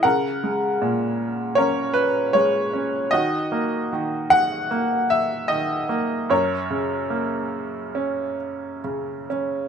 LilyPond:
<<
  \new Staff \with { instrumentName = "Upright piano" } { \time 4/4 \key fis \mixolydian \tempo 4 = 75 << { fis''2 cis''8 b'8 cis''4 | dis''4. fis''4 e''8 dis''4 | cis''2.~ cis''8 r8 | } \\ { ais'2 ais'2 | fis'2 r2 | ais'2.~ ais'8 r8 | } >> }
  \new Staff \with { instrumentName = "Upright piano" } { \clef bass \time 4/4 \key fis \mixolydian cis8 gis8 ais,4 cis'4 gis8 cis'8 | dis8 ais8 dis4 ais4 dis8 ais8 | fis,8 cis8 ais4 cis'4 cis8 cis'8 | }
>>